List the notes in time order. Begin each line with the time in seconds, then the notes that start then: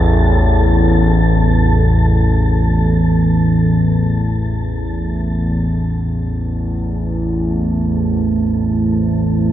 Already playing: A1 E2 A4 A5
6.05 A1 E2 A3 A4
7.46 C5
7.76 E4